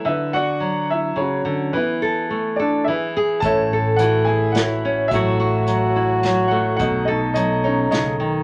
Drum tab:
HH |------|------|x-x-x-|x-x-x-|
SD |------|------|----o-|----o-|
BD |------|------|o-----|o-----|

HH |x-x-x-|
SD |----o-|
BD |o-----|